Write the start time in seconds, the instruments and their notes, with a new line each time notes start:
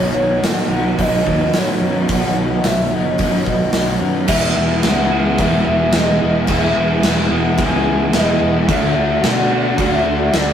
Already playing: overdriven electric guitar B2 D#3 F#3 B3 D#4, string machine D#4 C#5 B5, soft synth lead C#5
0.14 fingered electric bass B1
0.42 fingered electric bass A2, soft synth lead F#5, snare, open hi-hat
0.58 snare
0.69 fingered electric bass B1, overdriven electric guitar F#3 B3 D#4
0.97 fingered electric bass B1, overdriven electric guitar B2 D#3 F#3 B3 D#4, soft synth lead D#5, kick, open hi-hat
1.26 fingered electric bass D#2, kick
1.53 fingered electric bass A2, overdriven electric guitar D#3 F#3 B3 D#4, soft synth lead C#5, snare, open hi-hat
1.80 fingered electric bass F#2, overdriven electric guitar F#3 B3 D#4
2.08 fingered electric bass B1, overdriven electric guitar B2 D#3 F#3 B3 D#4, soft synth lead F#5, kick, open hi-hat
2.35 fingered electric bass B1
2.64 fingered electric bass B1, soft synth lead E5, snare, open hi-hat
2.90 fingered electric bass F#1, overdriven electric guitar F#3 B3 D#4, soft synth lead D#5
3.18 fingered electric bass F#2, overdriven electric guitar B2 D#3 F#3 B3 D#4, soft synth lead D#5, kick, open hi-hat
3.46 fingered electric bass B1, kick
3.73 fingered electric bass B1, overdriven electric guitar D#3 F#3 B3 D#4, snare, open hi-hat
4.01 fingered electric bass F#2, overdriven electric guitar F#3 B3 D#4
4.27 fingered electric bass E1, overdriven electric guitar E3 G#3 B3 E4 G#4, string machine E4 G#4 D#6, soft synth lead E5, kick, crash
4.54 fingered electric bass E1, overdriven electric guitar E3 G#3 B3 E4 G#4
4.82 fingered electric bass C#2, overdriven electric guitar E3 G#3 B3 E4 G#4, soft synth lead F#5, snare, crash
5.09 overdriven electric guitar E3 G#3 B3 E4 G#4
5.14 overdriven electric guitar E3
5.38 fingered electric bass E1, overdriven electric guitar E3 G#3 B3 E4 G#4, soft synth lead E5, kick, crash
5.65 fingered electric bass E1, overdriven electric guitar E3 G#3 B3 E4 G#4
5.92 fingered electric bass E1, overdriven electric guitar E3 G#3 B3 E4, snare, crash
5.96 overdriven electric guitar G#4, soft synth lead D#5
6.20 fingered electric bass E1, overdriven electric guitar E3 G#3 B3 E4 G#4
6.47 fingered electric bass E1, overdriven electric guitar E3 G#3 B3 E4 G#4, kick, crash
6.52 soft synth lead E5
6.74 fingered electric bass E1, overdriven electric guitar E3 G#3 B3 E4 G#4
7.01 fingered electric bass E1, overdriven electric guitar E3 G#3 B3 E4 G#4, snare, crash
7.08 soft synth lead F#5
7.29 fingered electric bass E1, overdriven electric guitar E3 G#3 B3 E4 G#4
7.58 fingered electric bass C#2, overdriven electric guitar E3 G#3 B3 E4 G#4, kick, crash
7.62 soft synth lead G#5
7.84 overdriven electric guitar E3 G#3 B3 E4 G#4
8.11 fingered electric bass E1, overdriven electric guitar E3 G#3 B3 E4 G#4, snare, crash
8.16 soft synth lead D#5
8.39 fingered electric bass E1, overdriven electric guitar E3 G#3 B3 E4 G#4
8.67 fingered electric bass D2, overdriven electric guitar D3 A3 D4 F#4, string machine F#4 D5 C#6, soft synth lead E5, kick, crash
8.95 fingered electric bass D2, overdriven electric guitar D3 A3 D4 F#4
9.23 fingered electric bass B2, overdriven electric guitar D3 A3 D4 F#4, soft synth lead F#5, snare, crash
9.48 overdriven electric guitar D3 A3 D4 F#4
9.53 overdriven electric guitar D3
9.77 fingered electric bass D2, overdriven electric guitar D3 A3 D4 F#4, kick, crash
9.82 soft synth lead E5
10.04 fingered electric bass D2, overdriven electric guitar D3 A3 D4 F#4
10.32 fingered electric bass D2, overdriven electric guitar D3 A3 D4 F#4, soft synth lead D5, snare, crash